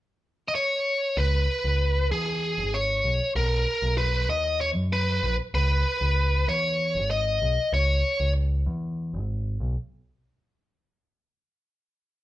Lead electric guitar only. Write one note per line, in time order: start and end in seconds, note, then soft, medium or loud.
0.48 0.55 D#5 medium
0.55 1.19 C#5 medium
1.18 2.11 B4 medium
2.12 2.75 G#4 medium
2.74 3.32 C#5 medium
3.36 3.97 A#4 medium
3.98 4.27 B4 medium
4.30 4.61 D#5 medium
4.61 4.69 C#5 medium
4.93 5.36 B4 medium
5.55 6.51 B4 medium
6.49 7.10 C#5 medium
7.11 7.73 D#5 medium
7.74 8.32 C#5 medium